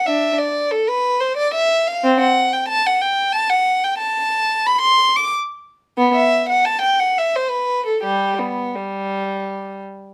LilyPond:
\new Staff \with { instrumentName = "Violin" } { \time 3/4 \key d \dorian \tempo 4 = 91 <d' e''>8 d''8 a'16 b'8 c''16 d''16 e''8 f''16 | \key g \major c'16 fis''8 g''16 a''16 fis''16 g''8 a''16 fis''8 g''16 | a''4 b''16 c'''8 d'''16 r4 | b16 e''8 fis''16 a''16 g''16 fis''16 e''16 c''16 b'8 a'16 |
<g g'>8 b8 g4. r8 | }